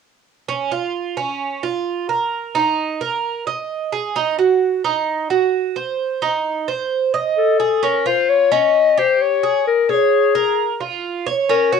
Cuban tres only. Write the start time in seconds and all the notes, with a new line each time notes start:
0.49 C#4
0.72 F4
1.17 C#4
1.63 F4
2.09 A#4
2.55 D#4
3.01 A#4
3.47 D#5
3.92 G#4
4.16 D#4
4.39 F#4
4.85 D#4
5.30 F#4
5.76 C5
6.22 D#4
6.68 C5
7.14 D#5
7.60 G#4
7.83 C#4
8.06 F4
8.52 C#4
8.98 G4
9.43 G#4
9.89 C#5
10.35 A#4
10.81 F4
11.27 C#5
11.49 C#4
11.72 F#4